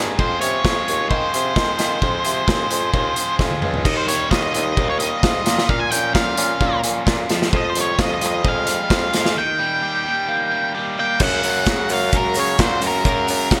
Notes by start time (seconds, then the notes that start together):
Already playing: G2 G#3 C4 D#4 G#4
0.00 G#3
0.19 F2 F3 C4 F4 G#4 C5, kick
0.41 C3 G#3 C4 F4 G#4 C#5, closed hi-hat
0.64 F2 F3 C4 F4 G#4, kick, snare
0.88 D#2 C4, closed hi-hat
1.09 D#3 F3 C4 F4 C5, kick
1.14 G#4
1.33 C3 C4 F4 G#4, closed hi-hat
1.55 D#3 F3 G#3 C4 F4 G#4, kick, snare
1.78 D#3 C4 F4 G#4, snare, closed hi-hat
2.01 F2 F3 C4 F4 G#4, kick
2.24 C3 G#3 C4 F4 G#4, closed hi-hat
2.46 D#2 F3 C4 F4 G#4, kick, snare
2.71 F2 C4, closed hi-hat
2.93 D#2 F3 C4 F4 G#4, kick
3.16 C4 F4 G#4, closed hi-hat
3.39 F2 F3 G#3 C4 F4 G#4, kick, snare
3.51 high tom
3.62 C#2 C4 F4 G#4, mid tom
3.74 floor tom
3.85 D#2 D#3 G3 A#3 F4 D#5, kick, crash
3.97 C5
4.07 D#2 G3 C#5, closed hi-hat
4.31 D#2 F4 D#5, kick, snare
4.43 D#5
4.54 D#2 D#3 G3 A#3 F4 D#5, closed hi-hat
4.77 D#2 A#3, kick
4.90 C#5
4.99 G3 D#5, closed hi-hat
5.23 G#2 D#3 G3 A#3 F4, kick, snare
5.46 A#2 F3 A#3 C#4 F4, snare, closed hi-hat
5.58 snare
5.69 A#2 F5, kick
5.80 G#5
5.91 A#2 C#4 G5, closed hi-hat
6.14 A#2 F3 A#3 C#4 F4 F5, kick, snare
6.37 A#2 C#4, closed hi-hat
6.61 A#2 A#3, kick
6.83 A#2 F3 A#3 C#4 F4, closed hi-hat
7.06 A#2 F4, kick, snare
7.30 F2 F3 G#3 C4 G4, snare, closed hi-hat
7.42 snare
7.53 F2 F3 D#5, kick
7.70 C5
7.75 F2 G3, closed hi-hat
7.81 C#5
7.99 F2 F3 C4 F4 G4 D#5, kick, snare
8.14 D#5
8.21 F2 G3, closed hi-hat
8.26 D#5
8.44 F2 G#3, kick
8.48 F5
8.66 F3 G3 C4 G4, closed hi-hat
8.90 F2 F4, kick, snare
9.13 F2 G#3, snare, closed hi-hat
9.26 snare
9.35 D#3 A#3 D#4 G4 G5
9.59 G3
9.82 G4
10.05 D#3 G3 A#3 D#4 G4
10.28 A#3
10.51 G3
10.75 D#3 A#3 D#4 G4
10.98 A#3 G5
11.20 F#2 C#3 F#3 G#3 A#3 C#4 F#4 A#4 F#5, kick, crash, shaker
11.43 F#2, open hi-hat, shaker
11.55 shaker
11.66 F#2 C#3 F#3 G#3 A#3 C#4 F#4 A#4, kick, snare, shaker
11.89 F#2 C#3 F#3 G#3 A#3 C#4 F#4 A#4, open hi-hat, shaker
11.94 F5
12.01 shaker
12.12 F#2 C#3 F#3 G#3 A#3 C#4 F#4 A#4, kick, shaker
12.16 A#4
12.34 C#3, open hi-hat, shaker
12.39 C#5
12.46 shaker
12.58 F#2 A#2 C#3 F#3 G#3 A#3 C#4 F#4 A#4 C5, kick, snare, shaker
12.81 F#2 C#3 F#3 G#3 A#3 C#4 F#4 A#4, open hi-hat, shaker
12.87 A#4
13.05 F#2 C#3 F#3 G#3 A#3 C#4 F#4 A#4, kick, shaker
13.28 F#2, open hi-hat, shaker
13.40 shaker
13.50 F#2 C#3 F#3 G#3 A#3 C#4 F#4 A#4, kick, snare, shaker